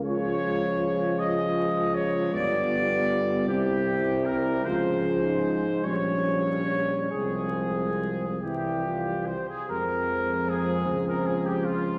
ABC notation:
X:1
M:6/8
L:1/16
Q:3/8=51
K:Fm
V:1 name="Trumpet section"
d6 e4 d2 | =d6 G4 B2 | c6 d6 | A6 G4 c A |
B4 A3 B A G F2 |]
V:2 name="French horn section"
F12- | F6 =E6 | F3 E3 D6 | C6 =E2 F2 G2 |
C12 |]
V:3 name="Euphonium" clef=bass
A,12 | =B,6 C6 | A,6 G,6 | A,6 G,4 z2 |
A,12 |]
V:4 name="Trombone" clef=bass
F,12 | G,12 | F,6 F,6 | F,6 =E,4 z2 |
F,12 |]
V:5 name="Tuba" clef=bass
D,,12 | G,,,6 C,,6 | D,,6 B,,,6 | C,,6 C,,4 z2 |
F,,6 D,,6 |]